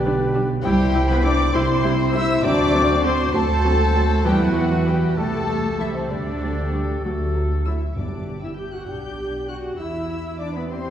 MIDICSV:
0, 0, Header, 1, 12, 480
1, 0, Start_track
1, 0, Key_signature, 1, "major"
1, 0, Tempo, 600601
1, 519, Time_signature, 6, 3, 24, 8
1, 3404, Tempo, 619195
1, 6284, Tempo, 606673
1, 8600, End_track
2, 0, Start_track
2, 0, Title_t, "Violin section"
2, 0, Program_c, 0, 48
2, 0, Note_on_c, 0, 74, 118
2, 258, Note_off_c, 0, 74, 0
2, 516, Note_on_c, 0, 79, 127
2, 849, Note_off_c, 0, 79, 0
2, 871, Note_on_c, 0, 83, 116
2, 990, Note_on_c, 0, 86, 127
2, 993, Note_off_c, 0, 83, 0
2, 1229, Note_on_c, 0, 84, 116
2, 1232, Note_off_c, 0, 86, 0
2, 1707, Note_on_c, 0, 88, 127
2, 1710, Note_off_c, 0, 84, 0
2, 1945, Note_off_c, 0, 88, 0
2, 1953, Note_on_c, 0, 86, 127
2, 2426, Note_off_c, 0, 86, 0
2, 2432, Note_on_c, 0, 84, 117
2, 2669, Note_off_c, 0, 84, 0
2, 2683, Note_on_c, 0, 81, 127
2, 3404, Note_on_c, 0, 79, 122
2, 3406, Note_off_c, 0, 81, 0
2, 3519, Note_off_c, 0, 79, 0
2, 3525, Note_on_c, 0, 78, 108
2, 3877, Note_on_c, 0, 79, 86
2, 3878, Note_off_c, 0, 78, 0
2, 4112, Note_on_c, 0, 81, 112
2, 4114, Note_off_c, 0, 79, 0
2, 4592, Note_on_c, 0, 76, 95
2, 4594, Note_off_c, 0, 81, 0
2, 4715, Note_off_c, 0, 76, 0
2, 4718, Note_on_c, 0, 72, 87
2, 4830, Note_on_c, 0, 74, 81
2, 4835, Note_off_c, 0, 72, 0
2, 5554, Note_off_c, 0, 74, 0
2, 6038, Note_on_c, 0, 88, 62
2, 6100, Note_off_c, 0, 88, 0
2, 6274, Note_on_c, 0, 86, 51
2, 6632, Note_off_c, 0, 86, 0
2, 6648, Note_on_c, 0, 88, 51
2, 6758, Note_on_c, 0, 91, 58
2, 6766, Note_off_c, 0, 88, 0
2, 6881, Note_off_c, 0, 91, 0
2, 6882, Note_on_c, 0, 90, 66
2, 6993, Note_on_c, 0, 91, 75
2, 7004, Note_off_c, 0, 90, 0
2, 7469, Note_off_c, 0, 91, 0
2, 7478, Note_on_c, 0, 90, 70
2, 7541, Note_off_c, 0, 90, 0
2, 7716, Note_on_c, 0, 88, 79
2, 8188, Note_off_c, 0, 88, 0
2, 8202, Note_on_c, 0, 86, 74
2, 8319, Note_off_c, 0, 86, 0
2, 8330, Note_on_c, 0, 83, 75
2, 8376, Note_off_c, 0, 83, 0
2, 8446, Note_on_c, 0, 84, 81
2, 8600, Note_off_c, 0, 84, 0
2, 8600, End_track
3, 0, Start_track
3, 0, Title_t, "Flute"
3, 0, Program_c, 1, 73
3, 0, Note_on_c, 1, 74, 108
3, 262, Note_off_c, 1, 74, 0
3, 517, Note_on_c, 1, 79, 123
3, 849, Note_off_c, 1, 79, 0
3, 868, Note_on_c, 1, 83, 89
3, 916, Note_off_c, 1, 83, 0
3, 979, Note_on_c, 1, 86, 111
3, 1221, Note_off_c, 1, 86, 0
3, 1229, Note_on_c, 1, 84, 92
3, 1700, Note_off_c, 1, 84, 0
3, 1709, Note_on_c, 1, 88, 112
3, 1764, Note_off_c, 1, 88, 0
3, 1949, Note_on_c, 1, 86, 127
3, 2423, Note_off_c, 1, 86, 0
3, 2430, Note_on_c, 1, 84, 104
3, 2485, Note_off_c, 1, 84, 0
3, 2671, Note_on_c, 1, 81, 113
3, 3385, Note_off_c, 1, 81, 0
3, 3389, Note_on_c, 1, 79, 115
3, 3436, Note_off_c, 1, 79, 0
3, 3508, Note_on_c, 1, 78, 97
3, 3862, Note_off_c, 1, 78, 0
3, 3873, Note_on_c, 1, 79, 74
3, 3927, Note_off_c, 1, 79, 0
3, 4108, Note_on_c, 1, 81, 97
3, 4583, Note_off_c, 1, 81, 0
3, 4589, Note_on_c, 1, 76, 77
3, 4711, Note_on_c, 1, 72, 74
3, 4723, Note_off_c, 1, 76, 0
3, 4829, Note_on_c, 1, 74, 81
3, 4840, Note_off_c, 1, 72, 0
3, 5554, Note_off_c, 1, 74, 0
3, 6037, Note_on_c, 1, 76, 64
3, 6262, Note_off_c, 1, 76, 0
3, 6276, Note_on_c, 1, 74, 46
3, 6633, Note_off_c, 1, 74, 0
3, 6642, Note_on_c, 1, 76, 45
3, 6690, Note_off_c, 1, 76, 0
3, 6761, Note_on_c, 1, 79, 58
3, 6884, Note_on_c, 1, 78, 53
3, 6895, Note_off_c, 1, 79, 0
3, 7008, Note_on_c, 1, 79, 64
3, 7019, Note_off_c, 1, 78, 0
3, 7476, Note_off_c, 1, 79, 0
3, 7481, Note_on_c, 1, 78, 68
3, 7535, Note_off_c, 1, 78, 0
3, 7726, Note_on_c, 1, 76, 81
3, 8193, Note_off_c, 1, 76, 0
3, 8207, Note_on_c, 1, 74, 69
3, 8255, Note_off_c, 1, 74, 0
3, 8322, Note_on_c, 1, 71, 62
3, 8441, Note_on_c, 1, 72, 73
3, 8453, Note_off_c, 1, 71, 0
3, 8600, Note_off_c, 1, 72, 0
3, 8600, End_track
4, 0, Start_track
4, 0, Title_t, "Violin section"
4, 0, Program_c, 2, 48
4, 0, Note_on_c, 2, 62, 89
4, 254, Note_off_c, 2, 62, 0
4, 508, Note_on_c, 2, 67, 111
4, 844, Note_off_c, 2, 67, 0
4, 865, Note_on_c, 2, 71, 105
4, 990, Note_off_c, 2, 71, 0
4, 994, Note_on_c, 2, 74, 122
4, 1223, Note_on_c, 2, 72, 91
4, 1229, Note_off_c, 2, 74, 0
4, 1697, Note_off_c, 2, 72, 0
4, 1714, Note_on_c, 2, 76, 106
4, 1949, Note_off_c, 2, 76, 0
4, 1961, Note_on_c, 2, 74, 113
4, 2424, Note_on_c, 2, 72, 115
4, 2439, Note_off_c, 2, 74, 0
4, 2488, Note_off_c, 2, 72, 0
4, 2675, Note_on_c, 2, 69, 123
4, 3388, Note_off_c, 2, 69, 0
4, 3403, Note_on_c, 2, 67, 105
4, 3521, Note_off_c, 2, 67, 0
4, 3534, Note_on_c, 2, 66, 96
4, 3875, Note_off_c, 2, 66, 0
4, 3878, Note_on_c, 2, 67, 82
4, 4109, Note_on_c, 2, 69, 95
4, 4115, Note_off_c, 2, 67, 0
4, 4583, Note_off_c, 2, 69, 0
4, 4584, Note_on_c, 2, 64, 78
4, 4696, Note_on_c, 2, 60, 68
4, 4708, Note_off_c, 2, 64, 0
4, 4824, Note_off_c, 2, 60, 0
4, 4839, Note_on_c, 2, 62, 75
4, 5559, Note_off_c, 2, 62, 0
4, 6039, Note_on_c, 2, 76, 59
4, 6263, Note_off_c, 2, 76, 0
4, 6282, Note_on_c, 2, 74, 47
4, 6644, Note_off_c, 2, 74, 0
4, 6648, Note_on_c, 2, 76, 52
4, 6695, Note_off_c, 2, 76, 0
4, 6769, Note_on_c, 2, 79, 57
4, 6885, Note_off_c, 2, 79, 0
4, 6889, Note_on_c, 2, 78, 56
4, 7005, Note_off_c, 2, 78, 0
4, 7009, Note_on_c, 2, 79, 64
4, 7487, Note_off_c, 2, 79, 0
4, 7495, Note_on_c, 2, 78, 56
4, 7725, Note_on_c, 2, 76, 62
4, 7729, Note_off_c, 2, 78, 0
4, 8202, Note_off_c, 2, 76, 0
4, 8209, Note_on_c, 2, 74, 68
4, 8319, Note_on_c, 2, 71, 66
4, 8325, Note_off_c, 2, 74, 0
4, 8440, Note_off_c, 2, 71, 0
4, 8444, Note_on_c, 2, 72, 74
4, 8600, Note_off_c, 2, 72, 0
4, 8600, End_track
5, 0, Start_track
5, 0, Title_t, "Oboe"
5, 0, Program_c, 3, 68
5, 0, Note_on_c, 3, 71, 80
5, 384, Note_off_c, 3, 71, 0
5, 520, Note_on_c, 3, 72, 95
5, 1203, Note_off_c, 3, 72, 0
5, 1227, Note_on_c, 3, 72, 97
5, 1934, Note_off_c, 3, 72, 0
5, 1952, Note_on_c, 3, 72, 98
5, 2661, Note_off_c, 3, 72, 0
5, 2666, Note_on_c, 3, 72, 89
5, 3398, Note_on_c, 3, 71, 89
5, 3410, Note_off_c, 3, 72, 0
5, 4115, Note_on_c, 3, 69, 89
5, 4126, Note_off_c, 3, 71, 0
5, 4837, Note_off_c, 3, 69, 0
5, 4841, Note_on_c, 3, 69, 75
5, 5545, Note_off_c, 3, 69, 0
5, 5564, Note_on_c, 3, 69, 76
5, 6035, Note_off_c, 3, 69, 0
5, 8600, End_track
6, 0, Start_track
6, 0, Title_t, "Trumpet section"
6, 0, Program_c, 4, 61
6, 0, Note_on_c, 4, 62, 105
6, 258, Note_off_c, 4, 62, 0
6, 522, Note_on_c, 4, 67, 116
6, 852, Note_off_c, 4, 67, 0
6, 876, Note_on_c, 4, 71, 90
6, 929, Note_off_c, 4, 71, 0
6, 990, Note_on_c, 4, 74, 108
6, 1227, Note_off_c, 4, 74, 0
6, 1229, Note_on_c, 4, 72, 94
6, 1706, Note_on_c, 4, 76, 118
6, 1710, Note_off_c, 4, 72, 0
6, 1945, Note_off_c, 4, 76, 0
6, 1947, Note_on_c, 4, 74, 112
6, 2430, Note_on_c, 4, 72, 109
6, 2432, Note_off_c, 4, 74, 0
6, 2671, Note_on_c, 4, 69, 107
6, 2673, Note_off_c, 4, 72, 0
6, 3386, Note_off_c, 4, 69, 0
6, 3401, Note_on_c, 4, 67, 117
6, 3517, Note_on_c, 4, 66, 106
6, 3520, Note_off_c, 4, 67, 0
6, 3867, Note_off_c, 4, 66, 0
6, 3880, Note_on_c, 4, 67, 85
6, 4113, Note_on_c, 4, 69, 100
6, 4116, Note_off_c, 4, 67, 0
6, 4585, Note_off_c, 4, 69, 0
6, 4595, Note_on_c, 4, 64, 78
6, 4713, Note_off_c, 4, 64, 0
6, 4716, Note_on_c, 4, 60, 74
6, 4832, Note_on_c, 4, 62, 82
6, 4837, Note_off_c, 4, 60, 0
6, 5541, Note_off_c, 4, 62, 0
6, 8600, End_track
7, 0, Start_track
7, 0, Title_t, "Clarinet"
7, 0, Program_c, 5, 71
7, 0, Note_on_c, 5, 67, 88
7, 375, Note_off_c, 5, 67, 0
7, 511, Note_on_c, 5, 64, 103
7, 1198, Note_off_c, 5, 64, 0
7, 1227, Note_on_c, 5, 64, 98
7, 1934, Note_off_c, 5, 64, 0
7, 1944, Note_on_c, 5, 66, 104
7, 2657, Note_off_c, 5, 66, 0
7, 2669, Note_on_c, 5, 66, 93
7, 3396, Note_on_c, 5, 64, 102
7, 3408, Note_off_c, 5, 66, 0
7, 3757, Note_on_c, 5, 66, 87
7, 3768, Note_off_c, 5, 64, 0
7, 4117, Note_on_c, 5, 67, 80
7, 4129, Note_off_c, 5, 66, 0
7, 4835, Note_off_c, 5, 67, 0
7, 4839, Note_on_c, 5, 67, 76
7, 5561, Note_on_c, 5, 66, 62
7, 5572, Note_off_c, 5, 67, 0
7, 5923, Note_off_c, 5, 66, 0
7, 6054, Note_on_c, 5, 64, 55
7, 6159, Note_off_c, 5, 64, 0
7, 6281, Note_on_c, 5, 62, 47
7, 6642, Note_on_c, 5, 64, 52
7, 6654, Note_off_c, 5, 62, 0
7, 6760, Note_off_c, 5, 64, 0
7, 6765, Note_on_c, 5, 67, 53
7, 6819, Note_off_c, 5, 67, 0
7, 6886, Note_on_c, 5, 66, 49
7, 6940, Note_off_c, 5, 66, 0
7, 7000, Note_on_c, 5, 67, 67
7, 7472, Note_off_c, 5, 67, 0
7, 7482, Note_on_c, 5, 66, 73
7, 7718, Note_off_c, 5, 66, 0
7, 7721, Note_on_c, 5, 64, 76
7, 8213, Note_on_c, 5, 62, 72
7, 8225, Note_off_c, 5, 64, 0
7, 8332, Note_on_c, 5, 59, 64
7, 8344, Note_off_c, 5, 62, 0
7, 8446, Note_off_c, 5, 59, 0
7, 8452, Note_on_c, 5, 60, 71
7, 8600, Note_off_c, 5, 60, 0
7, 8600, End_track
8, 0, Start_track
8, 0, Title_t, "French horn section"
8, 0, Program_c, 6, 60
8, 0, Note_on_c, 6, 59, 75
8, 0, Note_on_c, 6, 67, 95
8, 379, Note_off_c, 6, 59, 0
8, 379, Note_off_c, 6, 67, 0
8, 515, Note_on_c, 6, 60, 92
8, 515, Note_on_c, 6, 64, 101
8, 1200, Note_off_c, 6, 60, 0
8, 1200, Note_off_c, 6, 64, 0
8, 1219, Note_on_c, 6, 64, 94
8, 1224, Note_on_c, 6, 60, 104
8, 1930, Note_off_c, 6, 64, 0
8, 1933, Note_off_c, 6, 60, 0
8, 1949, Note_on_c, 6, 66, 98
8, 1956, Note_on_c, 6, 60, 103
8, 2663, Note_off_c, 6, 60, 0
8, 2670, Note_off_c, 6, 66, 0
8, 2675, Note_on_c, 6, 60, 98
8, 2680, Note_on_c, 6, 66, 95
8, 3388, Note_off_c, 6, 60, 0
8, 3390, Note_off_c, 6, 66, 0
8, 3394, Note_on_c, 6, 64, 96
8, 3397, Note_on_c, 6, 59, 87
8, 4109, Note_on_c, 6, 57, 84
8, 4110, Note_off_c, 6, 64, 0
8, 4111, Note_off_c, 6, 59, 0
8, 4115, Note_on_c, 6, 67, 79
8, 4827, Note_off_c, 6, 57, 0
8, 4827, Note_off_c, 6, 67, 0
8, 4836, Note_on_c, 6, 57, 69
8, 4836, Note_on_c, 6, 67, 75
8, 5543, Note_off_c, 6, 57, 0
8, 5543, Note_off_c, 6, 67, 0
8, 5558, Note_on_c, 6, 66, 70
8, 5560, Note_on_c, 6, 57, 62
8, 5914, Note_off_c, 6, 57, 0
8, 5914, Note_off_c, 6, 66, 0
8, 6046, Note_on_c, 6, 64, 58
8, 6153, Note_off_c, 6, 64, 0
8, 6277, Note_on_c, 6, 62, 45
8, 6634, Note_off_c, 6, 62, 0
8, 6639, Note_on_c, 6, 64, 47
8, 6755, Note_on_c, 6, 67, 54
8, 6759, Note_off_c, 6, 64, 0
8, 6877, Note_off_c, 6, 67, 0
8, 6880, Note_on_c, 6, 66, 55
8, 7003, Note_off_c, 6, 66, 0
8, 7005, Note_on_c, 6, 67, 60
8, 7475, Note_off_c, 6, 67, 0
8, 7489, Note_on_c, 6, 66, 57
8, 7715, Note_on_c, 6, 64, 72
8, 7727, Note_off_c, 6, 66, 0
8, 8188, Note_off_c, 6, 64, 0
8, 8189, Note_on_c, 6, 62, 76
8, 8306, Note_on_c, 6, 59, 65
8, 8315, Note_off_c, 6, 62, 0
8, 8363, Note_off_c, 6, 59, 0
8, 8424, Note_on_c, 6, 60, 71
8, 8600, Note_off_c, 6, 60, 0
8, 8600, End_track
9, 0, Start_track
9, 0, Title_t, "Cello section"
9, 0, Program_c, 7, 48
9, 0, Note_on_c, 7, 50, 91
9, 261, Note_off_c, 7, 50, 0
9, 514, Note_on_c, 7, 55, 122
9, 848, Note_off_c, 7, 55, 0
9, 867, Note_on_c, 7, 59, 107
9, 987, Note_on_c, 7, 62, 94
9, 988, Note_off_c, 7, 59, 0
9, 1231, Note_off_c, 7, 62, 0
9, 1233, Note_on_c, 7, 60, 109
9, 1702, Note_off_c, 7, 60, 0
9, 1713, Note_on_c, 7, 64, 109
9, 1949, Note_on_c, 7, 62, 126
9, 1953, Note_off_c, 7, 64, 0
9, 2426, Note_on_c, 7, 60, 97
9, 2433, Note_off_c, 7, 62, 0
9, 2667, Note_off_c, 7, 60, 0
9, 2670, Note_on_c, 7, 57, 106
9, 3398, Note_on_c, 7, 55, 111
9, 3400, Note_off_c, 7, 57, 0
9, 3515, Note_on_c, 7, 54, 94
9, 3516, Note_off_c, 7, 55, 0
9, 3872, Note_on_c, 7, 55, 77
9, 3873, Note_off_c, 7, 54, 0
9, 4107, Note_off_c, 7, 55, 0
9, 4116, Note_on_c, 7, 57, 92
9, 4591, Note_on_c, 7, 52, 74
9, 4596, Note_off_c, 7, 57, 0
9, 4714, Note_off_c, 7, 52, 0
9, 4714, Note_on_c, 7, 48, 71
9, 4831, Note_on_c, 7, 50, 85
9, 4836, Note_off_c, 7, 48, 0
9, 5555, Note_off_c, 7, 50, 0
9, 6279, Note_on_c, 7, 67, 55
9, 6972, Note_off_c, 7, 67, 0
9, 7004, Note_on_c, 7, 62, 57
9, 7709, Note_off_c, 7, 62, 0
9, 7720, Note_on_c, 7, 64, 60
9, 8424, Note_off_c, 7, 64, 0
9, 8436, Note_on_c, 7, 67, 79
9, 8600, Note_off_c, 7, 67, 0
9, 8600, End_track
10, 0, Start_track
10, 0, Title_t, "Viola section"
10, 0, Program_c, 8, 48
10, 43, Note_on_c, 8, 55, 89
10, 44, Note_on_c, 8, 62, 88
10, 107, Note_off_c, 8, 55, 0
10, 108, Note_off_c, 8, 62, 0
10, 275, Note_on_c, 8, 62, 82
10, 277, Note_on_c, 8, 55, 76
10, 339, Note_off_c, 8, 62, 0
10, 341, Note_off_c, 8, 55, 0
10, 515, Note_on_c, 8, 64, 90
10, 516, Note_on_c, 8, 55, 82
10, 579, Note_off_c, 8, 64, 0
10, 580, Note_off_c, 8, 55, 0
10, 749, Note_on_c, 8, 55, 82
10, 751, Note_on_c, 8, 64, 82
10, 813, Note_off_c, 8, 55, 0
10, 815, Note_off_c, 8, 64, 0
10, 984, Note_on_c, 8, 55, 82
10, 985, Note_on_c, 8, 64, 85
10, 1048, Note_off_c, 8, 55, 0
10, 1049, Note_off_c, 8, 64, 0
10, 1227, Note_on_c, 8, 55, 100
10, 1230, Note_on_c, 8, 64, 96
10, 1291, Note_off_c, 8, 55, 0
10, 1294, Note_off_c, 8, 64, 0
10, 1464, Note_on_c, 8, 64, 90
10, 1465, Note_on_c, 8, 55, 87
10, 1528, Note_off_c, 8, 64, 0
10, 1529, Note_off_c, 8, 55, 0
10, 1703, Note_on_c, 8, 55, 83
10, 1704, Note_on_c, 8, 64, 76
10, 1767, Note_off_c, 8, 55, 0
10, 1768, Note_off_c, 8, 64, 0
10, 1947, Note_on_c, 8, 60, 89
10, 1948, Note_on_c, 8, 54, 94
10, 2011, Note_off_c, 8, 60, 0
10, 2012, Note_off_c, 8, 54, 0
10, 2188, Note_on_c, 8, 60, 92
10, 2189, Note_on_c, 8, 54, 84
10, 2252, Note_off_c, 8, 60, 0
10, 2253, Note_off_c, 8, 54, 0
10, 2425, Note_on_c, 8, 54, 78
10, 2425, Note_on_c, 8, 60, 86
10, 2489, Note_off_c, 8, 54, 0
10, 2489, Note_off_c, 8, 60, 0
10, 2666, Note_on_c, 8, 54, 85
10, 2669, Note_on_c, 8, 60, 88
10, 2730, Note_off_c, 8, 54, 0
10, 2733, Note_off_c, 8, 60, 0
10, 2910, Note_on_c, 8, 54, 86
10, 2910, Note_on_c, 8, 60, 86
10, 2974, Note_off_c, 8, 54, 0
10, 2974, Note_off_c, 8, 60, 0
10, 3153, Note_on_c, 8, 60, 72
10, 3155, Note_on_c, 8, 54, 83
10, 3217, Note_off_c, 8, 60, 0
10, 3219, Note_off_c, 8, 54, 0
10, 3398, Note_on_c, 8, 52, 91
10, 3400, Note_on_c, 8, 59, 84
10, 3460, Note_off_c, 8, 52, 0
10, 3462, Note_off_c, 8, 59, 0
10, 3632, Note_on_c, 8, 59, 71
10, 3635, Note_on_c, 8, 52, 75
10, 3694, Note_off_c, 8, 59, 0
10, 3697, Note_off_c, 8, 52, 0
10, 3871, Note_on_c, 8, 52, 74
10, 3872, Note_on_c, 8, 59, 74
10, 3933, Note_off_c, 8, 52, 0
10, 3934, Note_off_c, 8, 59, 0
10, 4110, Note_on_c, 8, 55, 76
10, 4112, Note_on_c, 8, 57, 82
10, 4172, Note_off_c, 8, 55, 0
10, 4174, Note_off_c, 8, 57, 0
10, 4352, Note_on_c, 8, 57, 75
10, 4353, Note_on_c, 8, 55, 69
10, 4414, Note_off_c, 8, 57, 0
10, 4415, Note_off_c, 8, 55, 0
10, 4591, Note_on_c, 8, 57, 58
10, 4592, Note_on_c, 8, 55, 64
10, 4653, Note_off_c, 8, 57, 0
10, 4654, Note_off_c, 8, 55, 0
10, 4836, Note_on_c, 8, 57, 74
10, 4837, Note_on_c, 8, 55, 65
10, 4898, Note_off_c, 8, 57, 0
10, 4899, Note_off_c, 8, 55, 0
10, 5071, Note_on_c, 8, 55, 65
10, 5071, Note_on_c, 8, 57, 66
10, 5133, Note_off_c, 8, 55, 0
10, 5133, Note_off_c, 8, 57, 0
10, 5310, Note_on_c, 8, 57, 64
10, 5312, Note_on_c, 8, 55, 57
10, 5372, Note_off_c, 8, 57, 0
10, 5374, Note_off_c, 8, 55, 0
10, 5556, Note_on_c, 8, 54, 66
10, 5556, Note_on_c, 8, 57, 65
10, 5618, Note_off_c, 8, 54, 0
10, 5618, Note_off_c, 8, 57, 0
10, 5795, Note_on_c, 8, 54, 58
10, 5796, Note_on_c, 8, 57, 55
10, 5857, Note_off_c, 8, 54, 0
10, 5858, Note_off_c, 8, 57, 0
10, 6040, Note_on_c, 8, 54, 60
10, 6040, Note_on_c, 8, 57, 60
10, 6041, Note_on_c, 8, 64, 59
10, 6102, Note_off_c, 8, 54, 0
10, 6102, Note_off_c, 8, 57, 0
10, 6103, Note_off_c, 8, 64, 0
10, 6284, Note_on_c, 8, 62, 41
10, 6638, Note_off_c, 8, 62, 0
10, 6646, Note_on_c, 8, 64, 52
10, 6694, Note_off_c, 8, 64, 0
10, 6764, Note_on_c, 8, 67, 60
10, 6882, Note_off_c, 8, 67, 0
10, 6884, Note_on_c, 8, 66, 48
10, 7002, Note_off_c, 8, 66, 0
10, 7004, Note_on_c, 8, 67, 60
10, 7475, Note_off_c, 8, 67, 0
10, 7484, Note_on_c, 8, 66, 66
10, 7719, Note_off_c, 8, 66, 0
10, 7723, Note_on_c, 8, 64, 64
10, 8192, Note_off_c, 8, 64, 0
10, 8203, Note_on_c, 8, 62, 72
10, 8322, Note_off_c, 8, 62, 0
10, 8322, Note_on_c, 8, 59, 62
10, 8439, Note_on_c, 8, 60, 69
10, 8441, Note_off_c, 8, 59, 0
10, 8600, Note_off_c, 8, 60, 0
10, 8600, End_track
11, 0, Start_track
11, 0, Title_t, "Timpani"
11, 0, Program_c, 10, 47
11, 6272, Note_on_c, 10, 43, 63
11, 6969, Note_off_c, 10, 43, 0
11, 8600, End_track
12, 0, Start_track
12, 0, Title_t, "Double bass section"
12, 0, Program_c, 11, 48
12, 0, Note_on_c, 11, 35, 108
12, 433, Note_off_c, 11, 35, 0
12, 514, Note_on_c, 11, 36, 121
12, 1147, Note_off_c, 11, 36, 0
12, 1230, Note_on_c, 11, 36, 113
12, 1865, Note_off_c, 11, 36, 0
12, 1950, Note_on_c, 11, 38, 115
12, 2589, Note_off_c, 11, 38, 0
12, 2671, Note_on_c, 11, 38, 101
12, 3314, Note_off_c, 11, 38, 0
12, 3404, Note_on_c, 11, 40, 107
12, 4030, Note_off_c, 11, 40, 0
12, 4114, Note_on_c, 11, 36, 91
12, 4752, Note_off_c, 11, 36, 0
12, 4834, Note_on_c, 11, 38, 83
12, 5471, Note_off_c, 11, 38, 0
12, 5555, Note_on_c, 11, 38, 76
12, 6196, Note_off_c, 11, 38, 0
12, 6286, Note_on_c, 11, 31, 52
12, 6976, Note_off_c, 11, 31, 0
12, 7003, Note_on_c, 11, 35, 53
12, 7721, Note_on_c, 11, 40, 58
12, 7724, Note_off_c, 11, 35, 0
12, 8600, Note_off_c, 11, 40, 0
12, 8600, End_track
0, 0, End_of_file